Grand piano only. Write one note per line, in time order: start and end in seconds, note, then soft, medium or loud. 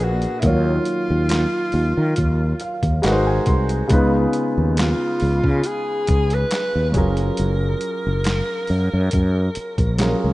0.00 0.42 A#2 medium
0.00 0.41 A#3 soft
0.00 0.47 D4 medium
0.00 0.44 G#4 medium
0.00 0.44 B4 medium
0.41 2.99 D#3 medium
0.41 2.99 A#3 medium
0.41 3.00 F4 medium
0.45 3.01 F#3 medium
0.45 3.01 C#5 medium
2.61 3.01 F5 medium
3.02 3.87 G#3 medium
3.02 3.90 D#4 medium
3.02 3.91 F#4 medium
3.02 3.91 A#4 medium
3.02 3.12 B4 medium
3.02 3.25 F#5 medium
3.12 3.95 C5 medium
3.27 3.46 G#5 medium
3.47 3.88 C6 medium
3.87 6.89 C#3 medium
3.87 6.90 G#3 medium
3.87 6.91 B3 medium
3.87 6.91 D#4 medium
3.92 6.92 F4 medium
3.92 6.92 B4 medium
6.92 9.94 F#3 medium
6.92 9.94 C#4 medium
6.92 9.95 F4 medium
6.96 9.96 G#4 medium
6.96 9.97 A#4 medium
9.98 10.33 F#3 medium
9.98 10.33 C#4 medium
9.98 10.33 F4 medium
9.98 10.33 G#4 medium
9.98 10.33 A#4 medium